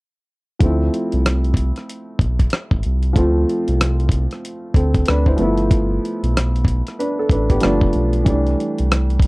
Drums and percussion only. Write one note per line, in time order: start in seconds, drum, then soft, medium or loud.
0.60 kick medium
0.60 closed hi-hat medium
0.94 closed hi-hat soft
1.12 closed hi-hat soft
1.26 cross-stick loud
1.26 closed hi-hat medium
1.45 closed hi-hat soft
1.54 kick medium
1.54 closed hi-hat medium
1.76 cross-stick soft
1.76 closed hi-hat soft
1.90 closed hi-hat medium
2.19 kick medium
2.19 closed hi-hat soft
2.39 kick medium
2.39 closed hi-hat soft
2.50 cross-stick medium
2.50 closed hi-hat medium
2.71 kick medium
2.83 closed hi-hat soft
3.03 closed hi-hat soft
3.16 kick medium
3.16 closed hi-hat medium
3.49 closed hi-hat soft
3.68 closed hi-hat soft
3.81 cross-stick loud
3.81 closed hi-hat medium
4.00 closed hi-hat soft
4.09 kick medium
4.09 closed hi-hat medium
4.31 cross-stick soft
4.31 closed hi-hat soft
4.45 closed hi-hat medium
4.74 kick medium
4.74 closed hi-hat soft
4.94 kick medium
4.94 closed hi-hat soft
5.06 cross-stick medium
5.06 closed hi-hat medium
5.26 kick medium
5.38 closed hi-hat soft
5.58 closed hi-hat soft
5.71 kick medium
5.71 closed hi-hat medium
6.05 closed hi-hat soft
6.24 closed hi-hat soft
6.37 cross-stick loud
6.37 closed hi-hat medium
6.56 closed hi-hat soft
6.65 kick medium
6.65 closed hi-hat medium
6.87 cross-stick soft
6.87 closed hi-hat soft
7.00 closed hi-hat medium
7.30 kick medium
7.30 closed hi-hat soft
7.50 kick medium
7.50 closed hi-hat soft
7.61 cross-stick medium
7.61 closed hi-hat medium
7.81 kick medium
7.93 closed hi-hat soft
8.13 closed hi-hat soft
8.26 kick medium
8.26 closed hi-hat medium
8.47 closed hi-hat soft
8.60 closed hi-hat soft
8.78 closed hi-hat soft
8.92 cross-stick loud
8.92 closed hi-hat medium
9.10 closed hi-hat soft
9.20 kick medium
9.20 closed hi-hat medium